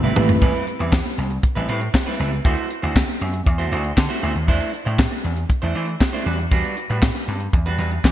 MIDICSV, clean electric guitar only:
0, 0, Header, 1, 3, 480
1, 0, Start_track
1, 0, Tempo, 508475
1, 392, Time_signature, 4, 2, 24, 8
1, 7663, End_track
2, 0, Start_track
2, 0, Title_t, "Clean electric guitar"
2, 0, Program_c, 0, 27
2, 29, Note_on_c, 0, 71, 83
2, 35, Note_on_c, 0, 64, 84
2, 39, Note_on_c, 0, 60, 88
2, 44, Note_on_c, 0, 55, 72
2, 139, Note_off_c, 0, 55, 0
2, 145, Note_off_c, 0, 60, 0
2, 149, Note_off_c, 0, 64, 0
2, 150, Note_on_c, 0, 55, 65
2, 153, Note_off_c, 0, 71, 0
2, 156, Note_on_c, 0, 60, 54
2, 160, Note_on_c, 0, 64, 70
2, 164, Note_on_c, 0, 71, 69
2, 260, Note_off_c, 0, 71, 0
2, 266, Note_off_c, 0, 64, 0
2, 272, Note_off_c, 0, 60, 0
2, 291, Note_off_c, 0, 55, 0
2, 386, Note_on_c, 0, 55, 79
2, 392, Note_on_c, 0, 60, 79
2, 398, Note_on_c, 0, 64, 93
2, 401, Note_on_c, 0, 71, 99
2, 610, Note_off_c, 0, 55, 0
2, 613, Note_off_c, 0, 60, 0
2, 615, Note_off_c, 0, 64, 0
2, 617, Note_off_c, 0, 71, 0
2, 748, Note_on_c, 0, 71, 66
2, 755, Note_on_c, 0, 64, 53
2, 759, Note_on_c, 0, 60, 57
2, 764, Note_on_c, 0, 55, 54
2, 859, Note_off_c, 0, 55, 0
2, 860, Note_off_c, 0, 60, 0
2, 865, Note_off_c, 0, 64, 0
2, 867, Note_off_c, 0, 71, 0
2, 1467, Note_on_c, 0, 71, 73
2, 1473, Note_on_c, 0, 64, 63
2, 1479, Note_on_c, 0, 60, 66
2, 1482, Note_on_c, 0, 55, 62
2, 1574, Note_off_c, 0, 55, 0
2, 1581, Note_off_c, 0, 60, 0
2, 1585, Note_off_c, 0, 64, 0
2, 1586, Note_on_c, 0, 55, 66
2, 1589, Note_off_c, 0, 71, 0
2, 1592, Note_on_c, 0, 60, 69
2, 1596, Note_on_c, 0, 64, 77
2, 1600, Note_on_c, 0, 71, 79
2, 1699, Note_off_c, 0, 71, 0
2, 1703, Note_off_c, 0, 64, 0
2, 1707, Note_off_c, 0, 60, 0
2, 1729, Note_off_c, 0, 55, 0
2, 1948, Note_on_c, 0, 71, 80
2, 1954, Note_on_c, 0, 64, 69
2, 1958, Note_on_c, 0, 60, 73
2, 1964, Note_on_c, 0, 55, 70
2, 2056, Note_off_c, 0, 55, 0
2, 2064, Note_off_c, 0, 60, 0
2, 2068, Note_off_c, 0, 64, 0
2, 2068, Note_on_c, 0, 55, 55
2, 2072, Note_off_c, 0, 71, 0
2, 2075, Note_on_c, 0, 60, 55
2, 2079, Note_on_c, 0, 64, 62
2, 2083, Note_on_c, 0, 71, 68
2, 2181, Note_off_c, 0, 71, 0
2, 2188, Note_off_c, 0, 64, 0
2, 2192, Note_off_c, 0, 60, 0
2, 2210, Note_off_c, 0, 55, 0
2, 2308, Note_on_c, 0, 57, 79
2, 2314, Note_on_c, 0, 64, 84
2, 2319, Note_on_c, 0, 66, 84
2, 2322, Note_on_c, 0, 72, 89
2, 2530, Note_off_c, 0, 57, 0
2, 2534, Note_off_c, 0, 64, 0
2, 2536, Note_off_c, 0, 66, 0
2, 2538, Note_off_c, 0, 72, 0
2, 2665, Note_on_c, 0, 72, 60
2, 2671, Note_on_c, 0, 66, 64
2, 2677, Note_on_c, 0, 64, 56
2, 2681, Note_on_c, 0, 57, 50
2, 2778, Note_off_c, 0, 57, 0
2, 2781, Note_off_c, 0, 64, 0
2, 2785, Note_off_c, 0, 66, 0
2, 2788, Note_off_c, 0, 72, 0
2, 3382, Note_on_c, 0, 72, 85
2, 3388, Note_on_c, 0, 66, 69
2, 3393, Note_on_c, 0, 64, 62
2, 3396, Note_on_c, 0, 57, 66
2, 3490, Note_off_c, 0, 57, 0
2, 3496, Note_off_c, 0, 64, 0
2, 3500, Note_off_c, 0, 66, 0
2, 3501, Note_on_c, 0, 57, 65
2, 3505, Note_off_c, 0, 72, 0
2, 3507, Note_on_c, 0, 64, 71
2, 3511, Note_on_c, 0, 66, 67
2, 3516, Note_on_c, 0, 72, 72
2, 3614, Note_off_c, 0, 72, 0
2, 3620, Note_off_c, 0, 66, 0
2, 3623, Note_off_c, 0, 64, 0
2, 3647, Note_off_c, 0, 57, 0
2, 3859, Note_on_c, 0, 72, 80
2, 3864, Note_on_c, 0, 66, 79
2, 3869, Note_on_c, 0, 64, 66
2, 3874, Note_on_c, 0, 57, 67
2, 3971, Note_off_c, 0, 57, 0
2, 3977, Note_off_c, 0, 64, 0
2, 3982, Note_off_c, 0, 66, 0
2, 3982, Note_on_c, 0, 57, 62
2, 3984, Note_off_c, 0, 72, 0
2, 3988, Note_on_c, 0, 64, 67
2, 3994, Note_on_c, 0, 66, 71
2, 3996, Note_on_c, 0, 72, 74
2, 4092, Note_off_c, 0, 72, 0
2, 4098, Note_off_c, 0, 66, 0
2, 4103, Note_off_c, 0, 64, 0
2, 4127, Note_off_c, 0, 57, 0
2, 4225, Note_on_c, 0, 57, 86
2, 4229, Note_on_c, 0, 62, 86
2, 4233, Note_on_c, 0, 64, 101
2, 4238, Note_on_c, 0, 72, 94
2, 4449, Note_off_c, 0, 57, 0
2, 4451, Note_off_c, 0, 62, 0
2, 4453, Note_off_c, 0, 64, 0
2, 4456, Note_off_c, 0, 72, 0
2, 4580, Note_on_c, 0, 72, 60
2, 4586, Note_on_c, 0, 64, 53
2, 4592, Note_on_c, 0, 62, 51
2, 4597, Note_on_c, 0, 57, 52
2, 4691, Note_off_c, 0, 57, 0
2, 4695, Note_off_c, 0, 62, 0
2, 4698, Note_off_c, 0, 64, 0
2, 4700, Note_off_c, 0, 72, 0
2, 5304, Note_on_c, 0, 72, 71
2, 5309, Note_on_c, 0, 64, 71
2, 5313, Note_on_c, 0, 62, 59
2, 5318, Note_on_c, 0, 57, 62
2, 5411, Note_off_c, 0, 57, 0
2, 5417, Note_off_c, 0, 62, 0
2, 5421, Note_off_c, 0, 64, 0
2, 5422, Note_on_c, 0, 57, 63
2, 5426, Note_off_c, 0, 72, 0
2, 5428, Note_on_c, 0, 62, 74
2, 5432, Note_on_c, 0, 64, 66
2, 5438, Note_on_c, 0, 72, 73
2, 5536, Note_off_c, 0, 72, 0
2, 5541, Note_off_c, 0, 64, 0
2, 5546, Note_off_c, 0, 62, 0
2, 5567, Note_off_c, 0, 57, 0
2, 5787, Note_on_c, 0, 72, 79
2, 5793, Note_on_c, 0, 64, 68
2, 5797, Note_on_c, 0, 62, 71
2, 5800, Note_on_c, 0, 57, 65
2, 5900, Note_off_c, 0, 62, 0
2, 5901, Note_off_c, 0, 57, 0
2, 5905, Note_on_c, 0, 55, 62
2, 5912, Note_on_c, 0, 62, 67
2, 5913, Note_off_c, 0, 64, 0
2, 5917, Note_on_c, 0, 66, 68
2, 5918, Note_off_c, 0, 72, 0
2, 5921, Note_on_c, 0, 71, 60
2, 6018, Note_off_c, 0, 71, 0
2, 6024, Note_off_c, 0, 66, 0
2, 6029, Note_off_c, 0, 62, 0
2, 6049, Note_off_c, 0, 55, 0
2, 6147, Note_on_c, 0, 55, 75
2, 6153, Note_on_c, 0, 62, 89
2, 6158, Note_on_c, 0, 66, 87
2, 6162, Note_on_c, 0, 71, 75
2, 6370, Note_off_c, 0, 55, 0
2, 6373, Note_off_c, 0, 62, 0
2, 6375, Note_off_c, 0, 66, 0
2, 6377, Note_off_c, 0, 71, 0
2, 6510, Note_on_c, 0, 71, 59
2, 6516, Note_on_c, 0, 66, 60
2, 6521, Note_on_c, 0, 62, 49
2, 6525, Note_on_c, 0, 55, 56
2, 6621, Note_off_c, 0, 55, 0
2, 6626, Note_off_c, 0, 62, 0
2, 6629, Note_off_c, 0, 66, 0
2, 6631, Note_off_c, 0, 71, 0
2, 7230, Note_on_c, 0, 71, 73
2, 7235, Note_on_c, 0, 66, 73
2, 7241, Note_on_c, 0, 62, 64
2, 7246, Note_on_c, 0, 55, 56
2, 7337, Note_off_c, 0, 55, 0
2, 7341, Note_off_c, 0, 62, 0
2, 7347, Note_off_c, 0, 66, 0
2, 7348, Note_on_c, 0, 55, 61
2, 7352, Note_off_c, 0, 71, 0
2, 7352, Note_on_c, 0, 62, 63
2, 7358, Note_on_c, 0, 66, 61
2, 7364, Note_on_c, 0, 71, 67
2, 7459, Note_off_c, 0, 71, 0
2, 7465, Note_off_c, 0, 66, 0
2, 7469, Note_off_c, 0, 62, 0
2, 7490, Note_off_c, 0, 55, 0
2, 7663, End_track
3, 0, Start_track
3, 0, Title_t, "Muted clean electric guitar strokes"
3, 272, Note_on_c, 9, 29, 48
3, 366, Note_off_c, 9, 29, 0
3, 629, Note_on_c, 9, 29, 51
3, 723, Note_off_c, 9, 29, 0
3, 989, Note_on_c, 9, 29, 35
3, 1084, Note_off_c, 9, 29, 0
3, 1230, Note_on_c, 9, 29, 43
3, 1324, Note_off_c, 9, 29, 0
3, 1347, Note_on_c, 9, 29, 47
3, 1442, Note_off_c, 9, 29, 0
3, 1711, Note_on_c, 9, 29, 45
3, 1805, Note_off_c, 9, 29, 0
3, 1829, Note_on_c, 9, 29, 39
3, 1923, Note_off_c, 9, 29, 0
3, 2192, Note_on_c, 9, 29, 39
3, 2287, Note_off_c, 9, 29, 0
3, 2548, Note_on_c, 9, 29, 38
3, 2643, Note_off_c, 9, 29, 0
3, 2789, Note_on_c, 9, 29, 46
3, 2883, Note_off_c, 9, 29, 0
3, 2907, Note_on_c, 9, 29, 38
3, 3001, Note_off_c, 9, 29, 0
3, 3144, Note_on_c, 9, 29, 44
3, 3238, Note_off_c, 9, 29, 0
3, 3265, Note_on_c, 9, 29, 41
3, 3359, Note_off_c, 9, 29, 0
3, 3625, Note_on_c, 9, 29, 50
3, 3720, Note_off_c, 9, 29, 0
3, 3741, Note_on_c, 9, 29, 45
3, 3836, Note_off_c, 9, 29, 0
3, 4103, Note_on_c, 9, 29, 39
3, 4198, Note_off_c, 9, 29, 0
3, 4463, Note_on_c, 9, 29, 34
3, 4558, Note_off_c, 9, 29, 0
3, 4703, Note_on_c, 9, 29, 40
3, 4797, Note_off_c, 9, 29, 0
3, 4822, Note_on_c, 9, 29, 44
3, 4916, Note_off_c, 9, 29, 0
3, 5063, Note_on_c, 9, 29, 51
3, 5158, Note_off_c, 9, 29, 0
3, 5184, Note_on_c, 9, 29, 39
3, 5279, Note_off_c, 9, 29, 0
3, 5548, Note_on_c, 9, 29, 39
3, 5642, Note_off_c, 9, 29, 0
3, 5666, Note_on_c, 9, 29, 40
3, 5761, Note_off_c, 9, 29, 0
3, 6030, Note_on_c, 9, 29, 41
3, 6124, Note_off_c, 9, 29, 0
3, 6391, Note_on_c, 9, 29, 38
3, 6485, Note_off_c, 9, 29, 0
3, 6632, Note_on_c, 9, 29, 44
3, 6726, Note_off_c, 9, 29, 0
3, 6751, Note_on_c, 9, 29, 42
3, 6846, Note_off_c, 9, 29, 0
3, 6991, Note_on_c, 9, 29, 46
3, 7085, Note_off_c, 9, 29, 0
3, 7111, Note_on_c, 9, 29, 42
3, 7205, Note_off_c, 9, 29, 0
3, 7470, Note_on_c, 9, 29, 39
3, 7565, Note_off_c, 9, 29, 0
3, 7589, Note_on_c, 9, 29, 42
3, 7663, Note_off_c, 9, 29, 0
3, 7663, End_track
0, 0, End_of_file